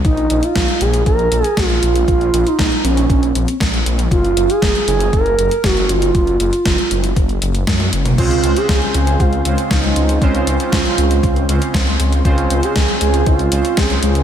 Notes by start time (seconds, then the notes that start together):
0.05 A#1 D#4, kick, closed hi-hat
0.17 closed hi-hat
0.30 A#1, closed hi-hat
0.43 F4, closed hi-hat
0.56 A#1, kick, snare, closed hi-hat
0.68 closed hi-hat
0.81 A#1 G#4, closed hi-hat
0.94 closed hi-hat
1.06 A#1 A#4, kick, closed hi-hat
1.19 closed hi-hat
1.32 A#1, closed hi-hat
1.44 G#4, closed hi-hat
1.57 A#1 F4, kick, snare, closed hi-hat
1.70 closed hi-hat
1.83 A#1, closed hi-hat
1.96 closed hi-hat
2.08 A#1 F4, kick, closed hi-hat
2.21 closed hi-hat
2.33 A#1, closed hi-hat
2.47 D#4, closed hi-hat
2.59 A#1, kick, snare, closed hi-hat
2.72 closed hi-hat
2.84 A#1 C#4, closed hi-hat
2.97 closed hi-hat
3.10 A#1, kick, closed hi-hat
3.23 closed hi-hat
3.35 A#1 C4, closed hi-hat
3.48 closed hi-hat
3.60 A#1, kick, snare, closed hi-hat
3.74 closed hi-hat
3.86 A#1, closed hi-hat
3.99 closed hi-hat
4.11 F#1 F4, kick, closed hi-hat
4.24 closed hi-hat
4.37 F#1, closed hi-hat
4.50 G#4, closed hi-hat
4.62 F#1, kick, snare, closed hi-hat
4.75 closed hi-hat
4.87 F#1 G#4, closed hi-hat
5.00 closed hi-hat
5.13 F#1 A#4, kick, closed hi-hat
5.26 closed hi-hat
5.38 F#1, closed hi-hat
5.51 closed hi-hat
5.64 F#1 F#4, kick, snare, closed hi-hat
5.77 closed hi-hat
5.89 F#1 F4, closed hi-hat
6.02 closed hi-hat
6.15 F#1, kick, closed hi-hat
6.27 closed hi-hat
6.40 F#1, closed hi-hat
6.53 closed hi-hat
6.66 F#1, kick, snare, closed hi-hat
6.78 closed hi-hat
6.91 F#1, closed hi-hat
7.04 closed hi-hat
7.16 F#1, kick, closed hi-hat
7.29 closed hi-hat
7.42 F#1, closed hi-hat
7.55 closed hi-hat
7.67 F#2, kick, snare, closed hi-hat, high tom
7.80 closed hi-hat, high tom
7.93 F#1, closed hi-hat
8.06 closed hi-hat, mid tom
8.18 C#2 C#3 G#3 C4 C#4 F4 C5, kick, closed hi-hat, crash
8.31 closed hi-hat
8.44 C#2, closed hi-hat
8.56 C#3 G#3 C4 C#4 F4 G#4 C5, closed hi-hat
8.69 C#2, kick, snare, closed hi-hat
8.82 closed hi-hat
8.94 C#2 G#4, closed hi-hat
9.07 closed hi-hat
9.20 C#2 F4, kick, closed hi-hat
9.33 closed hi-hat
9.45 C#2 C#3 G#3 C4 C#4 F4 C5, closed hi-hat
9.58 closed hi-hat
9.71 C#2 D#4, kick, snare, closed hi-hat
9.84 closed hi-hat
9.96 C#2, closed hi-hat
10.09 closed hi-hat
10.22 C#2 C#3 G#3 C4 C#4 F4 C5, kick, closed hi-hat
10.35 closed hi-hat
10.47 C#2 F4, closed hi-hat
10.60 C#3 G#3 C4 C#4 F4 C5, closed hi-hat
10.72 C#2, kick, snare, closed hi-hat
10.85 closed hi-hat
10.98 C#2, closed hi-hat
11.11 closed hi-hat
11.23 C#2, kick, closed hi-hat
11.36 closed hi-hat
11.49 C#2 C#3 G#3 C4 C#4 F4 C5, closed hi-hat
11.62 closed hi-hat
11.74 C#2, kick, snare, closed hi-hat
11.87 closed hi-hat
12.00 C#2, closed hi-hat
12.12 closed hi-hat
12.25 C#2 C#3 G#3 C4 C#4 F4 C5, kick, closed hi-hat
12.38 closed hi-hat
12.50 C#2, closed hi-hat
12.63 C#3 G#3 C4 C#4 F4 G#4 C5, closed hi-hat
12.76 C#2, kick, snare, closed hi-hat
12.89 closed hi-hat
13.01 C#2 G#4, closed hi-hat
13.14 closed hi-hat
13.26 C#2 F4, kick, closed hi-hat
13.39 closed hi-hat
13.52 C#2 C#3 G#3 C4 C#4 F4 C5, closed hi-hat
13.65 closed hi-hat
13.77 C#2 G#4, kick, snare, closed hi-hat
13.90 closed hi-hat
14.03 C#2, closed hi-hat
14.15 closed hi-hat